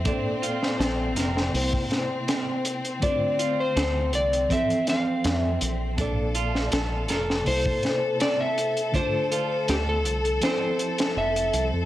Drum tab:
HH |x-x-x-x-o-x-x-xx|x-x-x-xxxxx-x-x-|x-x-x-x-o-x-x-xx|x-x-x-xxx-xx-xx-|
SD |---oo-oo--o-o---|----o-----o-o---|---oo-oo--o-o---|----o---o--o----|
BD |o--------o------|o-------o-------|o--------o------|o---------------|